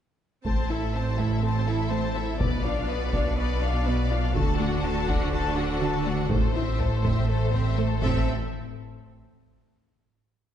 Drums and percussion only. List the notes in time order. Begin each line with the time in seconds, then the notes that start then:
0.45 taiko
1.19 taiko
2.40 taiko
3.13 taiko
4.35 taiko
5.09 taiko
6.31 taiko
6.80 taiko low
7.04 taiko
7.53 taiko low
8.02 taiko